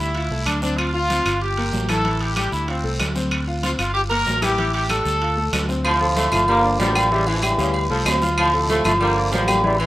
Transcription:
Already playing: horn section E4
0.00 fingered electric bass D2
0.14 grand piano F4 F5, high conga, high timbale, long guiro
0.30 fingered electric bass C2, grand piano A3 A4, high conga
0.46 fingered electric bass D2, horn section D4, high conga, high timbale, short guiro, claves
0.62 grand piano C4 C5, horn section D4, high conga, short guiro
0.77 horn section F4, high timbale, long guiro, claves
0.94 horn section F4, grand piano F4 F5, high conga
1.10 grand piano C4 C5, high conga, high timbale, short guiro
1.25 fingered electric bass G1, grand piano F4 F5, high conga, high timbale, short guiro, claves
1.41 horn section G4, high conga, long guiro
1.57 grand piano A#3 A#4, high conga, high timbale
1.73 fingered electric bass A1, high conga, low timbale, short guiro
1.89 grand piano E3 E4, horn section A4, high conga, high timbale, short guiro, claves
2.05 grand piano E3 E4, high conga, high timbale, long guiro
2.21 horn section G4, high conga, high timbale
2.36 grand piano G3 G4, horn section G4, high conga, high timbale, short guiro, claves
2.52 fingered electric bass D2, horn section E4, high conga, short guiro
2.68 horn section C4, grand piano F4 F5, high conga, high timbale, long guiro
2.84 fingered electric bass C2, grand piano A3 A4, high conga
3.00 fingered electric bass D2, high conga, high timbale, low timbale, short guiro, claves
3.15 grand piano C4 C5, high conga, short guiro
3.31 high conga, high timbale, long guiro, claves
3.47 grand piano F4 F5, high conga
3.63 grand piano C4 C5, horn section F4, high conga, high timbale, short guiro
3.79 fingered electric bass G1, grand piano F4 F5, horn section F4, high conga, high timbale, short guiro, claves
3.94 horn section G4, high conga, long guiro
4.10 grand piano A#3 A#4, horn section A#4, high conga, high timbale
4.26 fingered electric bass A1, high conga, low timbale, short guiro
4.42 grand piano E3 E4, horn section G4, high conga, high timbale, short guiro, claves
4.58 grand piano E3 E4, high conga, high timbale, long guiro
4.74 horn section G4, high conga, high timbale
4.89 grand piano G3 G4, horn section A4, high conga, high timbale, short guiro, claves
5.05 fingered electric bass D2, high conga, short guiro
5.21 grand piano F4 F5, high conga, high timbale, long guiro
5.37 grand piano A3 A4, high conga
5.53 fingered electric bass D2, high conga, high timbale, low timbale, short guiro, claves
5.69 grand piano C4 C5, high conga, short guiro
5.85 trombone section A2 C3 F3, saxophone section F3, high conga, low agogo, long guiro, claves
6.01 trombone section A2 C3 F3, grand piano A3 A4 A5, high conga
6.16 saxophone section A3, high conga, low timbale, low agogo, short guiro
6.32 fingered electric bass G1, grand piano F3 F4 F5, trombone section A3, high conga, low conga, low agogo, short guiro, claves
6.48 trombone section D3 F3 A#3, saxophone section G3, high conga, low agogo, long guiro
6.63 grand piano D4 D5 D6, high conga
6.79 fingered electric bass A1, trombone section D3 G3 A#3, saxophone section F3, high conga, low timbale, low agogo, short guiro
6.95 grand piano G3 G4 G5, high conga, low agogo, short guiro, claves
7.11 trombone section C#3 E3 G3, grand piano E3 E4 E5, long guiro
7.27 saxophone section E3, trombone section E3, high conga, low agogo
7.35 trombone section F3
7.42 trombone section G2 C#3 E3, grand piano G3 G4 G5, high conga, low timbale, low agogo, short guiro, claves
7.58 fingered electric bass D2, saxophone section C#3, grand piano G3 G4 F5, high conga, short guiro
7.74 high conga, low agogo, long guiro
7.90 fingered electric bass C2, saxophone section F3, grand piano A3 A4 A5, high conga
8.06 fingered electric bass D2, grand piano C4 C5 C6, high conga, low timbale, low agogo, short guiro, claves
8.22 grand piano F4 F5 F6, high conga, short guiro
8.37 trombone section A2 C3 F3, saxophone section F3, high conga, low agogo, long guiro, claves
8.53 trombone section A2 C3 F3, grand piano A3 A4 A5
8.69 saxophone section A3, high conga, low timbale, low agogo, short guiro
8.85 fingered electric bass G1, grand piano F3 F4 F5, trombone section A3, high conga, low conga, low agogo, short guiro, claves
9.00 trombone section D3 F3 A#3, saxophone section G3, high conga, low agogo, long guiro
9.16 grand piano D4 D5 D6, high conga
9.32 fingered electric bass A1, trombone section D3 G3 A#3, saxophone section F3, high conga, low timbale, low agogo, short guiro
9.48 grand piano G3 G4 G5, high conga, low agogo, short guiro, claves
9.64 trombone section C#3 E3 G3, grand piano E3 E4 E5, high conga, long guiro
9.79 trombone section G2 C#3 E3, saxophone section E3, high conga, low agogo

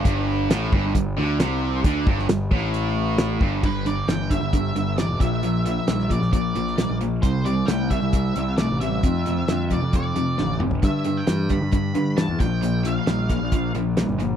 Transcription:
0.05 picked electric bass G1, overdriven electric guitar G2, kick, closed hi-hat
0.50 picked electric bass A1, overdriven electric guitar A2, snare, closed hi-hat
0.73 picked electric bass G1, overdriven electric guitar G2, kick
0.95 picked electric bass G1, overdriven electric guitar G2, kick, closed hi-hat
1.18 picked electric bass D2, overdriven electric guitar D3
1.40 picked electric bass C2, overdriven electric guitar C3, snare, closed hi-hat
1.84 picked electric bass D2, overdriven electric guitar D3, kick, closed hi-hat
2.07 picked electric bass G1, overdriven electric guitar G2, kick
2.19 snare
2.29 picked electric bass G1, overdriven electric guitar G2, snare, closed hi-hat
2.51 picked electric bass A1, overdriven electric guitar A2, kick
2.74 closed hi-hat
3.18 snare, closed hi-hat
3.41 picked electric bass G1, overdriven electric guitar G2, kick
3.63 picked electric bass G1, overdriven electric guitar G2 D3, lead electric guitar B4, kick, crash
3.86 overdriven electric guitar G2 D3, lead electric guitar D5, closed hi-hat
4.08 picked electric bass G1, overdriven electric guitar G2 E3, lead electric guitar G5, snare, closed hi-hat
4.30 overdriven electric guitar G2 D3, lead electric guitar E5, kick, closed hi-hat
4.41 picked electric bass G1
4.53 overdriven electric guitar G2 D3, kick, closed hi-hat
4.74 picked electric bass G1, overdriven electric guitar G2 D3, closed hi-hat
4.98 overdriven electric guitar G2 E3, lead electric guitar D5, snare, closed hi-hat
5.09 picked electric bass E1
5.20 picked electric bass A#1, overdriven electric guitar A#2 F3, lead electric guitar E5, kick, closed hi-hat
5.43 overdriven electric guitar A#2 F3, closed hi-hat
5.65 overdriven electric guitar A#2 F3, lead electric guitar E5, closed hi-hat
5.88 picked electric bass A#1, overdriven electric guitar A#2 G3, snare, closed hi-hat
5.99 snare
6.10 overdriven electric guitar A#2 F3, lead electric guitar D5, kick, closed hi-hat
6.21 picked electric bass A#1, snare
6.33 overdriven electric guitar A#2 F3, lead electric guitar D5, kick, closed hi-hat
6.55 picked electric bass A#1, overdriven electric guitar A#2 F3, closed hi-hat
6.67 snare
6.78 overdriven electric guitar A#2 G3, snare, closed hi-hat
6.90 picked electric bass A#1
7.01 overdriven electric guitar A#2 F3, closed hi-hat
7.22 picked electric bass C2, overdriven electric guitar C3 G3, lead electric guitar C5, kick, closed hi-hat
7.45 overdriven electric guitar C3 G3, lead electric guitar D5, closed hi-hat
7.66 picked electric bass C2, overdriven electric guitar C3 A3, lead electric guitar G5, snare, closed hi-hat
7.90 overdriven electric guitar C3 G3, lead electric guitar E5, kick, closed hi-hat
8.02 picked electric bass C2
8.13 overdriven electric guitar C3 G3, kick, closed hi-hat
8.36 picked electric bass C2, overdriven electric guitar C3 G3, closed hi-hat
8.58 overdriven electric guitar C3 A3, lead electric guitar D5, snare, closed hi-hat
8.71 picked electric bass A1
8.80 overdriven electric guitar C3 G3, lead electric guitar E5, closed hi-hat
9.03 overdriven electric guitar F2 C3, picked electric bass F2, kick, closed hi-hat
9.25 overdriven electric guitar F2 C3, closed hi-hat
9.48 overdriven electric guitar F2 D3, picked electric bass F2, snare, closed hi-hat
9.70 overdriven electric guitar F2 C3, lead electric guitar D5, kick, closed hi-hat
9.83 picked electric bass F2
9.93 overdriven electric guitar F2 C3, lead electric guitar D5, kick, closed hi-hat
10.15 overdriven electric guitar F2 C3, picked electric bass F2, closed hi-hat
10.38 picked electric bass A1, overdriven electric guitar F2 D3, snare
10.60 picked electric bass G1, overdriven electric guitar F2 C3, mid tom
10.71 floor tom
10.83 picked electric bass G2, overdriven electric guitar G2 D3, lead electric guitar E5, kick, closed hi-hat
11.04 overdriven electric guitar G2 D3, closed hi-hat
11.17 lead electric guitar G5
11.27 overdriven electric guitar G2 E3, picked electric bass G2, snare, closed hi-hat
11.49 overdriven electric guitar G2 D3, lead electric guitar B5, kick, closed hi-hat
11.62 picked electric bass G2
11.72 overdriven electric guitar G2 D3, lead electric guitar B5, kick, closed hi-hat
11.95 overdriven electric guitar G2 D3, picked electric bass G2, closed hi-hat
12.17 overdriven electric guitar G2 E3, lead electric guitar A5, snare, closed hi-hat
12.29 picked electric bass E2
12.40 picked electric bass A#1, overdriven electric guitar A#2 F3, lead electric guitar G5, kick, closed hi-hat
12.63 overdriven electric guitar A#2 F3, closed hi-hat
12.85 overdriven electric guitar A#2 F3, lead electric guitar F5, closed hi-hat
13.07 picked electric bass A#1, overdriven electric guitar A#2 G3, snare, closed hi-hat
13.29 overdriven electric guitar A#2 F3, kick, closed hi-hat
13.42 picked electric bass A#1
13.52 overdriven electric guitar A#2 F3, kick, closed hi-hat
13.75 picked electric bass A#1, overdriven electric guitar A#2 F3, closed hi-hat
13.97 overdriven electric guitar A#2 G3, snare, closed hi-hat
14.09 picked electric bass G1
14.20 overdriven electric guitar A#2 F3, closed hi-hat

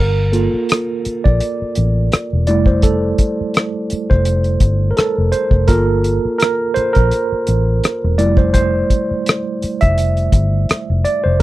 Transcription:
Already playing: fingered electric bass G1, tine electric piano A#4
0.32 tine electric piano A#3 F4 A4, closed hi-hat
0.54 muted fingered electric bass stroke
0.69 cross-stick, closed hi-hat
1.05 muted fingered electric bass stroke, closed hi-hat
1.24 fingered electric bass A#1, tine electric piano D5, kick
1.40 closed hi-hat
1.62 muted fingered electric bass stroke
1.75 fingered electric bass A1, closed hi-hat
2.12 muted fingered electric bass stroke, cross-stick, closed hi-hat
2.33 fingered electric bass E1
2.47 fingered electric bass F1, tine electric piano G3 A3 E4 D5, closed hi-hat
2.66 tine electric piano C5, kick
2.82 tine electric piano A4, kick, closed hi-hat
3.18 kick, closed hi-hat
3.41 muted fingered electric bass stroke
3.54 cross-stick, closed hi-hat
3.90 muted fingered electric bass stroke, closed hi-hat
4.10 fingered electric bass F1, tine electric piano C5, kick
4.25 closed hi-hat
4.44 closed hi-hat
4.60 fingered electric bass G1, kick, closed hi-hat
4.91 tine electric piano A#4
4.97 tine electric piano A4, muted fingered electric bass stroke, cross-stick, closed hi-hat
5.18 fingered electric bass F1
5.32 tine electric piano C5, closed hi-hat
5.51 fingered electric bass F1, kick
5.67 fingered electric bass G1, tine electric piano A#3 F4 A4 A#4, kick, closed hi-hat
6.04 closed hi-hat
6.25 muted fingered electric bass stroke
6.38 tine electric piano A#4, closed hi-hat
6.42 cross-stick
6.74 tine electric piano C5, muted fingered electric bass stroke, closed hi-hat
6.93 tine electric piano A#4, kick, closed hi-hat
6.97 fingered electric bass A#1
7.11 closed hi-hat
7.32 muted fingered electric bass stroke
7.47 fingered electric bass A1, closed hi-hat
7.84 cross-stick, closed hi-hat
8.04 fingered electric bass E1
8.18 fingered electric bass F1, tine electric piano G3 A3 E4 D5, closed hi-hat
8.37 tine electric piano C5, kick
8.54 tine electric piano C5, kick, closed hi-hat
8.90 kick, closed hi-hat
9.11 muted fingered electric bass stroke
9.26 cross-stick, closed hi-hat
9.62 muted fingered electric bass stroke, closed hi-hat
9.81 fingered electric bass F1, tine electric piano E5, kick, closed hi-hat
9.98 closed hi-hat
10.17 closed hi-hat
10.32 fingered electric bass G1, kick, closed hi-hat
10.69 muted fingered electric bass stroke, cross-stick, closed hi-hat
10.90 fingered electric bass F1
11.05 tine electric piano D5, closed hi-hat
11.24 fingered electric bass F1, tine electric piano C5

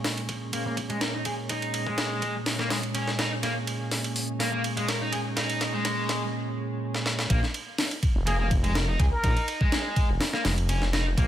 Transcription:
Already playing: tonewheel organ A#2 G#3 C#4
0.04 snare, open hi-hat
0.17 ride
0.29 kick, ride
0.53 overdriven electric guitar A#3, ride
0.66 overdriven electric guitar A#3
0.77 kick, ride
0.90 overdriven electric guitar G#3, ride
1.01 overdriven electric guitar A#4, snare, ride
1.14 overdriven electric guitar D#4
1.25 overdriven electric guitar G#4, kick, ride
1.49 overdriven electric guitar D#4, kick, ride
1.62 ride
1.74 ride
1.87 overdriven electric guitar G#3, kick
1.98 snare, ride
2.22 kick, ride
2.46 snare, open hi-hat
2.59 overdriven electric guitar A#3, snare
2.70 overdriven electric guitar G#3, snare, open hi-hat
2.83 ride
2.95 overdriven electric guitar C#4, ride
3.08 snare
3.19 overdriven electric guitar D#4, snare, ride
3.43 overdriven electric guitar A#3, snare, ride
3.67 ride
3.91 snare, open hi-hat
4.04 ride
4.16 open hi-hat
4.40 overdriven electric guitar A#3, snare, open hi-hat
4.53 overdriven electric guitar A#3
4.64 ride
4.77 overdriven electric guitar G#3, ride
4.88 overdriven electric guitar A#4, snare, ride
5.01 overdriven electric guitar D#4
5.12 overdriven electric guitar G#4, ride
5.37 overdriven electric guitar D#4, snare, ride
5.50 ride
5.61 snare, ride
5.74 overdriven electric guitar G#3
5.85 snare, ride
6.09 snare, ride
6.95 snare
7.06 snare
7.19 snare
7.30 detuned saw bass A#1, overdriven electric guitar A#3, kick, ride
7.43 snare
7.54 ride
7.78 snare, open hi-hat
7.91 ride
8.03 kick, ride
8.16 detuned saw bass F1
8.27 detuned saw bass F1, overdriven electric guitar A#3, muted trumpet G#4, ride
8.40 overdriven electric guitar A#3, muted trumpet G#4
8.51 kick, ride
8.64 overdriven electric guitar G#3, ride
8.75 overdriven electric guitar A#4, snare, ride
8.88 overdriven electric guitar D#4
8.99 detuned saw bass C#2, overdriven electric guitar G#4, kick, ride
9.12 muted trumpet A#4
9.24 detuned saw bass A#1, overdriven electric guitar D#4, kick, ride
9.37 ride
9.48 ride
9.61 overdriven electric guitar G#3, kick
9.72 snare, ride
9.96 kick, ride
10.09 detuned saw bass F1
10.21 snare, open hi-hat
10.34 overdriven electric guitar A#3, snare
10.45 detuned saw bass F1, overdriven electric guitar G#3, snare, open hi-hat
10.58 ride
10.69 overdriven electric guitar C#4, ride
10.82 snare
10.93 overdriven electric guitar D#4, snare, ride
11.17 detuned saw bass A#1, overdriven electric guitar A#3, kick, ride

